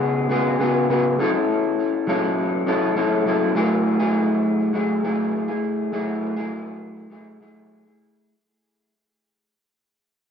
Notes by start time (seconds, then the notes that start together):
Already playing: C#3 B3 F#4 G#4
0.29 C#3 B3 F#4 G#4
0.59 C#3 B3 F#4 G#4
0.89 C#3 B3 F#4 G#4
1.19 F#3 C#4 E4 A4
1.33 C#4 E4 A4
2.07 F#3 C#4 E4 A4
2.66 F#3 C#4 E4 A4
2.95 F#3 C#4 E4 A4
3.26 F#3 C#4 E4 A4
3.55 F#3 A3 E4 G#4
4.00 F#3 A3 E4 G#4
4.73 F#3 A3 E4 G#4
5.03 F#3 A3 E4 G#4
5.48 A3 E4 G#4
5.92 F#3 A3 E4 G#4
6.36 F#3 A3 E4 G#4
7.10 F#3 A3 E4 G#4
7.40 F#3 A3 E4 G#4
7.85 A3 E4 G#4